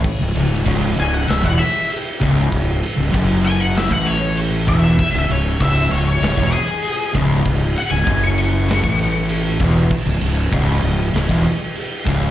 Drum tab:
CC |x---------------|----------------|----------------|----------------|
RD |--x-x-x-x-x-x-x-|x-x-x-x-x-x-x-x-|x-x-x-x-x-x-x-x-|x-x-x-x-x-x-x-x-|
SD |---o----o-------|---o----o-------|--------o-------|---o----o-------|
BD |o---o----o----o-|o---o----o----o-|o---o----o----o-|o---o----o----o-|

CC |x---------------|
RD |--x-x-x-x-x-x-x-|
SD |--------o-------|
BD |o---o----o----o-|